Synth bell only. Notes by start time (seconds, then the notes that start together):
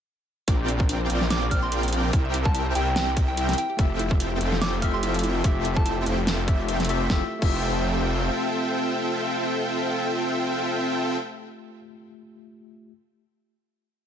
1.31 D6
1.51 F6
1.63 C6
2.45 A5
2.54 A5
2.75 G5
2.96 G5
3.28 G5
3.58 G5
4.61 D6
4.82 F6
4.94 C6
5.76 A5
5.86 A5